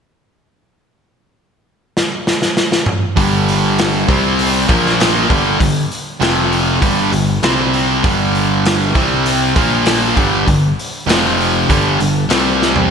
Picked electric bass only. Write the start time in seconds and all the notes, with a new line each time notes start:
3.17 G1
4.09 C2
4.69 A#1
5.30 G1
5.60 G1
6.21 F1
6.82 G1
7.12 G1
7.43 C2
8.04 G1
8.95 C2
9.56 A#1
10.17 G1
10.47 G1
11.07 F1
11.69 G1
12.00 G1
12.31 C2